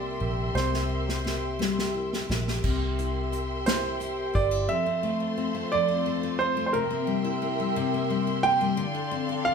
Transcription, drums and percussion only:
0.56 snare soft
0.74 snare soft
1.09 snare medium
1.26 snare medium
1.61 snare medium
1.79 snare medium
2.13 snare medium
2.31 snare medium
2.48 snare medium
2.64 kick medium
2.64 crash medium
2.99 closed hi-hat soft
3.33 closed hi-hat soft
3.66 snare loud
3.66 closed hi-hat medium
4.01 closed hi-hat soft
4.35 kick medium
4.35 closed hi-hat soft

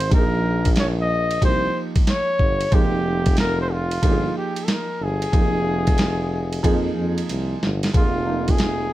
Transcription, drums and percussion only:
0.00 ride medium
0.11 kick loud
0.11 ride medium
0.65 kick medium
0.65 ride medium
0.76 snare loud
0.76 hi-hat pedal medium
0.76 ride medium
1.31 ride medium
1.42 kick medium
1.42 ride medium
1.96 kick loud
1.96 ride medium
2.07 snare loud
2.07 hi-hat pedal soft
2.07 ride medium
2.39 kick medium
2.61 ride medium
2.72 kick loud
2.72 ride medium
3.26 kick loud
3.26 ride medium
3.37 snare loud
3.37 hi-hat pedal medium
3.37 ride medium
3.91 ride medium
4.03 kick medium
4.03 ride medium
4.56 ride medium
4.68 snare loud
4.68 hi-hat pedal soft
4.68 ride medium
5.22 ride medium
5.33 kick loud
5.33 ride medium
5.87 kick medium
5.87 ride medium
5.98 snare loud
5.98 hi-hat pedal medium
5.98 ride medium
6.53 ride medium
6.64 kick medium
6.64 ride medium
7.18 ride medium
7.29 hi-hat pedal soft
7.29 ride medium
7.63 snare loud
7.83 snare loud
7.83 ride medium
7.94 kick loud
7.94 ride medium
8.48 kick medium
8.48 ride medium
8.58 snare loud
8.58 hi-hat pedal medium
8.58 ride medium

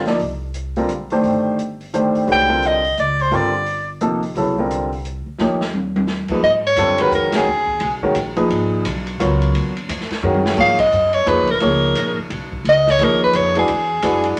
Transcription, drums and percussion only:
0.06 snare soft
0.06 open hi-hat soft
0.19 open hi-hat soft
0.54 closed hi-hat soft
0.76 open hi-hat soft
0.89 closed hi-hat soft
1.10 open hi-hat soft
1.24 open hi-hat soft
1.59 closed hi-hat soft
1.81 open hi-hat soft
1.94 closed hi-hat soft
2.15 open hi-hat soft
2.27 open hi-hat soft
2.62 closed hi-hat soft
2.84 open hi-hat soft
2.98 closed hi-hat soft
3.19 open hi-hat soft
3.32 open hi-hat soft
3.66 open hi-hat soft
4.01 closed hi-hat soft
4.23 open hi-hat soft
4.36 open hi-hat soft
4.71 closed hi-hat soft
4.93 open hi-hat soft
5.05 closed hi-hat soft
5.38 snare soft
5.61 snare medium
5.73 high tom medium
5.96 high tom medium
6.07 snare medium
6.28 kick medium
6.28 crash medium
6.76 hi-hat pedal medium
6.76 ride medium
6.98 ride medium
7.12 hi-hat pedal medium
7.32 snare medium
7.32 ride medium
7.67 kick medium
7.80 ride medium
8.02 kick soft
8.15 hi-hat pedal medium
8.15 ride medium
8.37 ride soft
8.50 ride medium
8.85 hi-hat pedal medium
8.85 ride medium
9.07 ride soft
9.20 hi-hat pedal medium
9.20 ride medium
9.42 ride soft
9.55 ride medium
9.77 ride soft
9.89 hi-hat pedal medium
9.89 ride medium
10.01 snare soft
10.10 snare soft
10.10 ride soft
10.34 high tom medium
10.46 snare medium
10.57 kick medium
10.57 crash medium
10.79 kick medium
10.79 ride medium
10.92 hi-hat pedal medium
11.13 ride soft
11.27 hi-hat pedal soft
11.27 ride medium
11.47 ride soft
11.60 ride medium
11.95 hi-hat pedal medium
11.95 ride medium
12.30 ride medium
12.52 kick medium
12.65 ride medium
12.87 snare soft
12.99 hi-hat pedal medium
12.99 ride medium
13.33 hi-hat pedal medium
13.33 ride medium
13.55 ride soft
13.68 ride medium
14.02 hi-hat pedal medium
14.02 ride medium
14.24 ride soft

